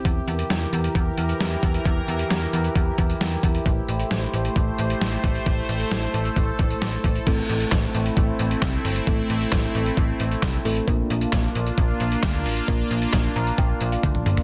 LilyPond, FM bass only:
\new Staff \with { instrumentName = "FM bass" } { \clef bass \time 4/4 \key a \phrygian \tempo 4 = 133 e,8 e,8 e,8 e,8 e,8 e,8 e,8 e,8 | e,8 e,8 e,8 e,8 e,8 e,8 e,8 e,8 | a,,8 a,,8 a,,8 a,,8 a,,8 a,,8 a,,8 a,,8 | a,,8 a,,8 a,,8 a,,8 a,,8 a,,8 a,,8 a,,8 |
a,,8 a,,8 a,,8 a,,8 a,,8 a,,8 c,8 g,,8 | a,,8 a,,8 a,,8 a,,8 a,,8 a,,8 c,8 a,,8 | bes,,8 bes,,8 bes,,8 bes,,8 bes,,8 bes,,8 d,8 a,,8 | bes,,8 bes,,8 bes,,8 bes,,8 bes,,8 bes,,8 d,8 g,,8 | }